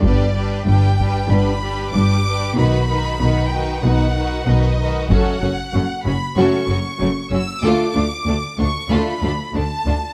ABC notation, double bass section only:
X:1
M:4/4
L:1/8
Q:1/4=95
K:F#phr
V:1 name="Double bass section" clef=bass
G,,,2 G,,,2 G,,,2 G,,,2 | B,,,2 B,,,2 B,,,2 B,,,2 | F,,, F,,, F,,, F,,, F,,, F,,, F,,, F,,, | D,, D,, D,, D,, D,, D,, D,, D,, |]